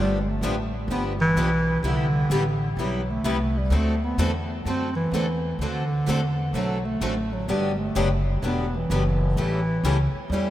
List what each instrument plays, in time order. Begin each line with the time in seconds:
Already playing: upright bass G1, steel-string acoustic guitar D3 F3 B3 D4 G4
0.01 bass clarinet G3
0.21 bass clarinet G#3
0.31 bass clarinet A3
0.41 upright bass A1, steel-string acoustic guitar D3 F3 B3 D4 G4
0.88 upright bass G1, steel-string acoustic guitar D3 F3 B3 D4 G4, bass clarinet B3
1.21 bass clarinet E3
1.36 upright bass B1, steel-string acoustic guitar D3 F3 B3 D4 G4
1.83 upright bass C2, steel-string acoustic guitar C3 G3 B3 E4 G4, bass clarinet D3
2.30 upright bass A1, steel-string acoustic guitar C3 G3 B3 E4 G4
2.77 upright bass B1, steel-string acoustic guitar C3 G3 B3 E4 G4, bass clarinet F#3
3.10 bass clarinet A3
3.24 upright bass C2, steel-string acoustic guitar C3 G3 B3 E4 G4
3.58 bass clarinet G3
3.70 upright bass D2, steel-string acoustic guitar D3 A3 C4 F#4 A4
3.75 bass clarinet A3
4.04 bass clarinet B3
4.18 upright bass E2, steel-string acoustic guitar D3 A3 C4 F#4 A4
4.65 upright bass F#2, steel-string acoustic guitar D3 A3 C4 F#4 A4, bass clarinet C4
4.96 bass clarinet E3
5.11 upright bass E2, steel-string acoustic guitar D3 A3 C4 F#4 A4
5.59 upright bass D2, steel-string acoustic guitar D3 A3 C4 F#4
5.63 bass clarinet D3, steel-string acoustic guitar A4
6.08 upright bass E2, steel-string acoustic guitar D3 A3 C4 F#4 A4
6.53 upright bass B1, steel-string acoustic guitar D3 A3 C4 F#4 A4, bass clarinet F#3
6.85 bass clarinet A3
7.01 upright bass A1, steel-string acoustic guitar D3 A3 C4 F#4 A4
7.33 bass clarinet F#3
7.48 upright bass G1, steel-string acoustic guitar D3 F#3 B3 D4 G4, bass clarinet G3
7.79 bass clarinet A3
7.96 upright bass F#1, steel-string acoustic guitar D3 F#3 B3 D4 G4
8.42 upright bass E1, steel-string acoustic guitar D3 F#3 B3 D4 G4
8.47 bass clarinet B3
8.76 bass clarinet E3
8.90 upright bass F#1, steel-string acoustic guitar D3 F#3 B3 D4 G4
9.36 upright bass A1, steel-string acoustic guitar C#3 E3 G3 A3 C#4 E4 G4 A4, bass clarinet E3
9.83 upright bass C#2, steel-string acoustic guitar C#3 E3 G3 A3 C#4 E4 G4 A4
10.13 muted upright bass stroke
10.30 upright bass E2, steel-string acoustic guitar C#3 E3 G3 E4 A4, bass clarinet G3
10.34 steel-string acoustic guitar A3 C#4 G4